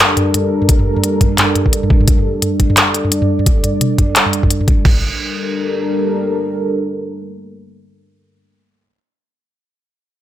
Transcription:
Already playing: G3 D4 A4 A#4
0.17 closed hi-hat, mid tom
0.34 closed hi-hat, mid tom
0.62 mid tom
0.69 kick, closed hi-hat
0.79 mid tom
0.96 mid tom
1.04 closed hi-hat
1.21 kick, closed hi-hat, mid tom
1.38 clap, closed hi-hat, mid tom
1.55 closed hi-hat, mid tom
1.66 kick
1.73 closed hi-hat
1.83 mid tom
1.90 kick
2.01 mid tom
2.08 D5, kick, closed hi-hat
2.18 mid tom
2.42 closed hi-hat, mid tom
2.60 kick, closed hi-hat
2.70 mid tom
2.77 clap, closed hi-hat
2.94 closed hi-hat
3.05 mid tom
3.12 closed hi-hat
3.22 mid tom
3.39 mid tom
3.46 kick, closed hi-hat
3.64 closed hi-hat, mid tom
3.81 closed hi-hat, mid tom
3.98 kick, closed hi-hat, mid tom
4.16 clap, closed hi-hat
4.26 mid tom
4.33 closed hi-hat
4.43 kick, mid tom
4.50 closed hi-hat
4.61 mid tom
4.68 kick, closed hi-hat
4.85 G3 D4 A4 A#4, kick, floor tom, crash

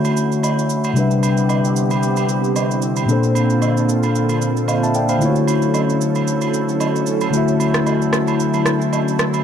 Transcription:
Already playing: D3 A3 C#4 E4 F#4 C#5 E5
0.04 high agogo, shaker
0.17 shaker
0.32 shaker
0.43 B5, high agogo, low woodblock, shaker
0.59 shaker
0.69 shaker
0.84 high agogo, shaker
0.94 C3 D3 G3 B3 C4 D4 G4, shaker
0.99 B4 E5
1.11 shaker
1.23 high agogo, shaker
1.37 shaker
1.49 high agogo, low woodblock, shaker
1.65 shaker
1.76 shaker
1.90 high agogo, shaker
2.03 shaker
2.16 high agogo, shaker
2.29 shaker
2.44 shaker
2.56 high agogo, low woodblock, shaker
2.71 shaker
2.82 shaker
2.96 high agogo, shaker
3.06 A#2 A#3 D4 F4 A4, shaker
3.11 A4 C5
3.23 shaker
3.35 high agogo, shaker
3.50 shaker
3.62 high agogo, low woodblock, shaker
3.77 shaker
3.89 shaker
4.03 high agogo, shaker
4.15 shaker
4.29 high agogo, shaker
4.41 shaker
4.57 shaker
4.68 C5 F5, high agogo, low woodblock, shaker
4.83 E5 A5, shaker
4.94 D5 G5, shaker
5.09 C5 F5, high agogo, shaker
5.19 D3 F#3 A3 C#4 E4, shaker
5.24 F4 C#5
5.30 F#4
5.36 shaker
5.47 high agogo, shaker
5.62 shaker
5.74 high agogo, low woodblock, shaker
5.89 shaker
6.01 shaker
6.15 high agogo, shaker
6.27 shaker
6.41 high agogo, shaker
6.54 shaker
6.69 shaker
6.80 high agogo, low woodblock, shaker
6.96 shaker
7.06 shaker
7.21 high agogo, shaker
7.31 D3 A3 E4, shaker
7.36 F#4 E5
7.48 shaker
7.60 high agogo, shaker
7.74 cross-stick, shaker
7.86 high agogo, low woodblock, shaker
8.02 shaker
8.13 cross-stick, shaker
8.27 high agogo, shaker
8.40 shaker
8.54 high agogo, shaker
8.66 cross-stick, shaker
8.81 shaker
8.93 high agogo, low woodblock, shaker
9.08 shaker
9.19 cross-stick, shaker
9.34 high agogo, shaker

